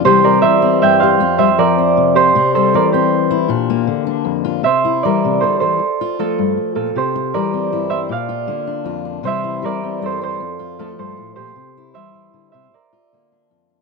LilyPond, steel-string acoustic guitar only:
\new Staff \with { instrumentName = "Steel-string acoustic guitar" } { \clef bass \time 12/8 \key c \mixolydian \tempo 4. = 104 << { <e g c' g'>8 g4 c'4 g'8 c'8 g16 r8. c'4 f'8 | c'8 g4 c'4 e'8 d'8 bes4 d'4 f'8 | r8 e'8 g2 r8 f'8 a2 | r4 g8 c'8 e'8 c'8 r8 f'8 bes8 d'8 f'8 d'8 |
<e g c' e'>8 e'8 g8 c'8 e'8 c'8 r8 f'8 a2 | r8 e'8 g2 r8 f'8 bes8 d'8 f'8 d'8 | } \\ { c4 e4 g,4 f,4 f4 c4 | c4 e2 bes,4 d4 f,4 | c4 e8 c8 d8 e8 r4 f8 g,8 r8 bes,8 | c4 e4 g,4 bes,4 d4 f,4 |
c4 e4 g,4 f,4 f8 g,8 a,8 bes,8 | c4 e8 e8 d8 c8 r4 d4 f,4 | } >> }